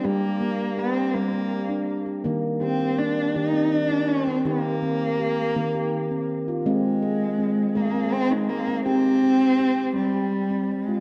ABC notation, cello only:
X:1
M:6/8
L:1/16
Q:3/8=54
K:Eb
V:1 name="Cello"
B,4 C2 B,4 z2 | z2 C2 D2 E2 D2 C2 | B,8- B,2 z2 | A,6 B,2 C A, B,2 |
C6 G,4 A,2 |]